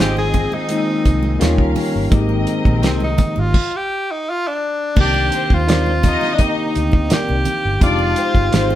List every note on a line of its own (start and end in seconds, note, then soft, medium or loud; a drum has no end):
0.00 0.45 G#1 medium
0.00 0.17 D#3 medium
0.00 0.17 G#3 medium
0.00 1.39 G#3 medium
0.00 0.18 A#3 medium
0.00 1.39 A#3 medium
0.00 0.18 C4 medium
0.00 1.36 C4 medium
0.00 1.37 C4 medium
0.00 0.19 D#4 medium
0.00 0.19 F4 medium
0.00 0.17 G4 medium
0.00 0.20 G#4 medium
0.00 1.37 G#4 medium
0.00 0.20 C5 medium
0.00 1.37 D#5 medium
0.00 snare loud
0.00 muted conga soft
0.17 0.55 G#4 medium
0.17 high conga medium
0.34 kick medium
0.34 closed hi-hat medium
0.34 muted conga soft
0.34 low conga medium
0.52 1.60 D#4 medium
0.52 high conga medium
0.68 1.38 D#3 medium
0.68 1.41 G#3 medium
0.68 1.40 A#3 medium
0.68 1.42 C4 medium
0.68 1.42 D#4 medium
0.68 closed hi-hat medium
0.68 muted conga soft
1.05 1.38 C2 medium
1.05 kick medium
1.05 closed hi-hat medium
1.05 muted conga soft
1.23 high conga medium
1.39 1.59 D#2 loud
1.39 2.03 D#3 medium
1.39 2.11 D#3 medium
1.39 2.04 G3 medium
1.39 2.04 A#3 medium
1.39 2.11 C#4 medium
1.39 2.05 C#4 medium
1.39 1.61 F4 medium
1.39 2.12 F4 medium
1.39 2.05 F4 loud
1.39 3.52 G4 medium
1.39 1.62 G4 medium
1.39 2.11 A#4 medium
1.39 1.62 C#5 medium
1.39 2.11 F5 medium
1.39 snare loud
1.39 closed hi-hat loud
1.58 1.75 C#2 medium
1.58 kick medium
1.76 open hi-hat medium
1.76 muted conga soft
1.76 low conga medium
1.95 2.11 G1 medium
2.10 2.44 G#1 loud
2.10 3.37 D#3 medium
2.10 3.38 G#3 medium
2.10 3.53 G#3 medium
2.10 3.38 A#3 medium
2.10 3.53 C4 medium
2.10 3.52 C4 medium
2.10 3.39 C4 medium
2.10 3.39 G4 medium
2.10 3.52 A#4 medium
2.10 3.52 D#5 medium
2.10 kick loud
2.10 closed hi-hat medium
2.10 low conga medium
2.29 high conga medium
2.47 closed hi-hat medium
2.47 muted conga soft
2.65 2.84 A#1 medium
2.65 kick medium
2.65 high conga medium
2.82 3.16 C2 medium
2.82 3.03 C4 medium
2.82 3.01 C4 medium
2.82 3.04 G4 medium
2.82 3.04 A#4 medium
2.82 snare loud
2.82 closed hi-hat medium
2.82 muted conga soft
3.00 3.41 D#4 medium
3.00 high conga medium
3.18 kick medium
3.18 closed hi-hat medium
3.18 muted conga soft
3.18 low conga medium
3.36 3.53 G#1 medium
3.36 high conga medium
3.40 3.78 F4 medium
3.54 kick loud
3.54 crash medium
3.76 4.13 G4 loud
4.11 4.31 D#4 medium
4.30 4.49 F4 loud
4.47 4.99 D4 medium
4.95 5.29 C2 medium
4.95 7.79 C3 medium
4.95 6.22 D#3 medium
4.95 6.22 A#3 medium
4.95 7.78 C4 medium
4.95 6.23 C4 medium
4.95 5.25 D4 loud
4.95 6.23 D4 medium
4.95 6.23 G4 medium
4.95 5.25 D5 loud
4.95 kick loud
4.95 crash medium
4.95 muted conga soft
4.95 low conga medium
5.00 5.55 G4 loud
5.14 high conga medium
5.32 5.61 C4 medium
5.32 5.61 C5 medium
5.32 closed hi-hat medium
5.32 muted conga soft
5.50 6.15 D#2 medium
5.50 6.35 F4 medium
5.50 kick medium
5.50 high conga medium
5.67 5.96 C4 medium
5.67 5.88 D#4 medium
5.67 5.89 A#4 medium
5.67 5.96 C5 medium
5.67 5.89 D5 medium
5.67 snare loud
5.67 closed hi-hat medium
5.86 high conga medium
6.03 6.70 D#4 loud
6.03 6.70 D#5 loud
6.03 kick medium
6.03 closed hi-hat medium
6.03 muted conga soft
6.03 low conga medium
6.21 snare soft
6.21 high conga medium
6.34 6.43 D4 medium
6.34 7.64 D#4 medium
6.38 7.65 A#3 medium
6.38 7.65 C4 medium
6.38 7.14 D#4 medium
6.38 7.66 G4 medium
6.38 kick loud
6.38 closed hi-hat medium
6.75 7.07 D2 medium
6.75 closed hi-hat medium
6.92 kick medium
6.92 high conga medium
7.09 7.30 D#4 medium
7.09 7.83 G4 medium
7.09 7.31 A#4 medium
7.09 7.31 D5 medium
7.09 muted fingered electric bass stroke soft
7.09 snare loud
7.09 closed hi-hat loud
7.09 muted conga soft
7.29 7.45 C2 medium
7.29 high conga medium
7.45 closed hi-hat medium
7.45 low conga medium
7.65 7.80 G1 medium
7.80 8.14 F1 loud
7.80 8.75 F3 medium
7.80 8.75 G#3 medium
7.80 8.75 C4 medium
7.80 8.10 D4 loud
7.80 8.75 D#4 medium
7.80 8.75 F4 loud
7.80 8.75 G4 medium
7.80 8.10 D5 loud
7.80 kick loud
7.80 closed hi-hat medium
7.80 muted conga soft
7.80 low conga medium
7.99 high conga medium
8.16 8.46 C4 medium
8.16 8.46 C5 medium
8.16 closed hi-hat medium
8.16 muted conga soft
8.35 8.51 G1 medium
8.35 kick medium
8.35 high conga medium
8.52 8.75 G#1 medium
8.52 8.73 G#3 medium
8.52 8.75 C4 medium
8.52 8.73 D#4 medium
8.52 8.74 G4 medium
8.52 8.75 C5 loud
8.52 snare loud
8.52 closed hi-hat medium
8.70 high conga medium